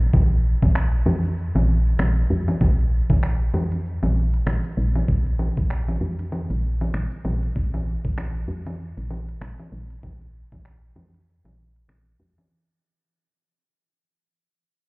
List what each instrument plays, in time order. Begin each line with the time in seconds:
0.02 cabasa
0.13 fm bass A#1, kick, low conga, cabasa
0.32 cabasa
0.62 fm bass A#1, kick, low conga, cabasa
0.75 finger snap, cabasa
0.94 cabasa
1.06 fm bass F2, low conga
1.25 cabasa
1.38 cabasa
1.55 fm bass A#1, low conga, cabasa
1.87 cabasa
1.99 fm bass A#1, finger snap, low conga, cabasa
2.18 cabasa
2.30 fm bass F2
2.48 low conga, cabasa
2.61 fm bass A#1, kick, low conga, cabasa
2.79 closed hi-hat, cabasa
3.10 fm bass A#1, kick, closed hi-hat, low conga, cabasa
3.23 finger snap, cabasa
3.42 cabasa
3.54 fm bass F2, low conga
3.72 closed hi-hat, cabasa
3.86 cabasa
4.03 fm bass A#1, closed hi-hat, low conga, cabasa
4.34 closed hi-hat, cabasa
4.46 fm bass A#1, finger snap, low conga, cabasa
4.65 closed hi-hat, cabasa
4.77 fm bass A#1
4.95 closed hi-hat, low conga, cabasa
5.08 fm bass A#1, kick, cabasa
5.27 closed hi-hat, cabasa
5.39 low conga
5.57 fm bass A#1, kick, closed hi-hat, cabasa
5.70 finger snap, cabasa
5.88 low conga, cabasa
6.01 fm bass F2
6.19 closed hi-hat, cabasa
6.32 low conga, cabasa
6.50 fm bass A#1, closed hi-hat, cabasa
6.81 closed hi-hat, low conga, cabasa
6.94 fm bass A#1, finger snap, cabasa
7.12 closed hi-hat, cabasa
7.25 fm bass A#1, low conga
7.43 closed hi-hat, cabasa
7.56 fm bass A#1, kick, cabasa
7.74 closed hi-hat, low conga, cabasa
8.05 fm bass A#1, kick, closed hi-hat, cabasa
8.18 finger snap, low conga, cabasa
8.36 cabasa
8.48 fm bass F2
8.66 closed hi-hat, low conga, cabasa
8.80 cabasa
8.97 fm bass A#1, closed hi-hat, cabasa
9.11 low conga
9.29 closed hi-hat, cabasa
9.41 fm bass A#1, finger snap, cabasa
9.59 closed hi-hat, low conga, cabasa
9.72 fm bass A#1
9.90 closed hi-hat, cabasa
10.03 fm bass A#1, kick, low conga, cabasa
10.21 closed hi-hat, cabasa
10.52 fm bass A#1, kick, closed hi-hat, low conga, cabasa
10.65 finger snap, cabasa
10.83 closed hi-hat, cabasa
10.96 fm bass F2, low conga
11.14 closed hi-hat, cabasa
11.28 cabasa
11.45 fm bass A#1, closed hi-hat, low conga, cabasa
11.76 closed hi-hat, cabasa
11.89 fm bass A#1, finger snap, low conga, cabasa
12.07 closed hi-hat, cabasa
12.20 fm bass F2
12.38 closed hi-hat, low conga, cabasa